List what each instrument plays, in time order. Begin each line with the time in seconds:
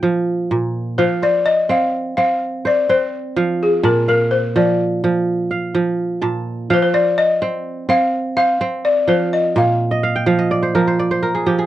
Already playing: kora A#2 G5
0.03 kora F3
0.51 kora A#2
0.98 kora F3 F5, balafon C5
1.22 kora C5, balafon D5
1.46 balafon D#5
1.69 kora C4, balafon F5
2.17 kora C4, balafon F5
2.65 kora C5, balafon D5
2.89 kora C4, balafon C5
3.36 kora F3 F5
3.63 balafon G#4
3.83 kora A#2 A5, balafon A#4
4.08 balafon A#4, kora F5
4.31 balafon C5
4.56 kora F3, balafon D5
5.04 kora F3
5.51 kora F5
5.75 kora F3
6.22 kora A#2 A5
6.70 kora F3 F5, balafon C5
6.76 balafon C5
6.82 balafon C5
6.94 kora C5, balafon D5
7.18 balafon D#5
7.42 kora C4
7.89 kora C4, balafon F5
8.37 kora C5, balafon F5
8.61 kora C4
8.85 balafon D5
9.07 kora F3 F5, balafon C5
9.33 balafon D#5
9.56 kora A#2, balafon F5
9.91 kora D#5
10.03 kora F5
10.16 kora G5
10.26 kora F3 F5
10.39 kora D#5
10.51 kora D5
10.63 kora C5
10.75 kora F3 A#4
10.87 kora C5
10.99 kora D5
11.11 kora C5
11.23 kora A#4
11.35 kora G#4
11.46 kora F3 G4
11.59 kora G#4